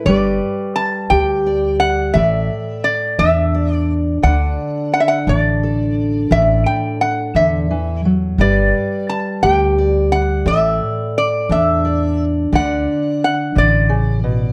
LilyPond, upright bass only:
\new Staff \with { instrumentName = "Upright bass" } { \clef bass \time 6/8 \key g \lydian \tempo 4. = 58 g,,8 r4 d,4. | a,,8 r4 e,4. | d,8 r4 a,,4. | a,,8 r4 e,4. |
g,,8 r4 d,4. | a,,8 r4 e,4. | d,8 r4 a,,4. | }